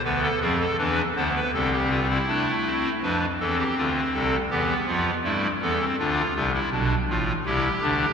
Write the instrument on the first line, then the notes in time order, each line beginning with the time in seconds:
pipe organ
0.04 D2 D3 B3 B4
0.23 A4
0.40 F2 F3 C4 G#4
0.60 A4
0.78 E2 E3 D4 B4
1.16 D2 D3 B3 C5
1.35 B4
1.54 C2 C3 C4 A4
1.72 G4
1.91 F4
2.10 E4
2.28 A3 D4
2.66 C4
3.02 F2 F3 D4 B4
3.40 E2 E3 C4 A4
3.58 G4
3.77 D2 D3 F4
4.14 C2 C3 A4
4.50 E2 E3 B3 G4
4.87 F2 F3 F4
5.24 G2 G3 A3 E4
5.61 E2 E3 B3 A4
5.80 C4
5.99 D2 D3 D4 F4
6.35 C2 C3 F4
6.54 E4
6.72 B1 B2 D4
7.09 A1 A2 F4
7.46 C2 C3 E4 G4
7.82 D2 D3 D4